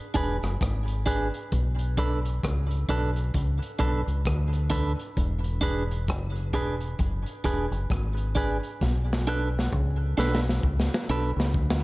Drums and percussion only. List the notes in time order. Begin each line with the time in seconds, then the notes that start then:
0.15 kick, closed hi-hat
0.43 cross-stick, closed hi-hat
0.61 kick, cross-stick, closed hi-hat
0.88 closed hi-hat
1.07 kick, closed hi-hat
1.34 closed hi-hat
1.52 kick, closed hi-hat
1.79 closed hi-hat
1.97 kick, closed hi-hat
2.25 closed hi-hat
2.43 kick, cross-stick, closed hi-hat
2.71 closed hi-hat
2.89 kick, closed hi-hat
3.16 closed hi-hat
3.34 kick, closed hi-hat
3.62 closed hi-hat
3.80 kick, closed hi-hat
4.08 closed hi-hat
4.25 kick, cross-stick, closed hi-hat
4.53 closed hi-hat
4.71 kick, closed hi-hat
4.99 closed hi-hat
5.17 kick, closed hi-hat
5.44 closed hi-hat
5.62 kick, closed hi-hat
5.91 closed hi-hat
6.08 kick, cross-stick, closed hi-hat
6.35 closed hi-hat
6.53 kick, closed hi-hat
6.81 closed hi-hat
6.99 kick, closed hi-hat
7.26 closed hi-hat
7.44 kick, closed hi-hat
7.72 closed hi-hat
7.90 kick, cross-stick, closed hi-hat
8.17 closed hi-hat
8.36 kick, closed hi-hat
8.63 closed hi-hat
8.81 kick, snare
9.13 snare
9.59 snare
9.73 kick
10.19 snare
10.35 snare
10.49 snare
10.63 kick
10.80 snare
10.94 snare
11.40 snare
11.54 kick
11.70 snare